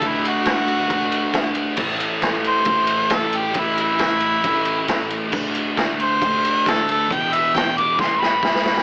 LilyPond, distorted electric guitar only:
\new Staff \with { instrumentName = "Distorted electric guitar" } { \clef bass \time 4/4 \key d \lydian \tempo 4 = 136 <d a d'>2 <d a d'>2 | <a, e a>2 <a, e a>2 | <a, e a>2 <a, e a>2 | <d a d'>2 <d a d'>2 |
<e, b, e>2 <a, e a>2 | }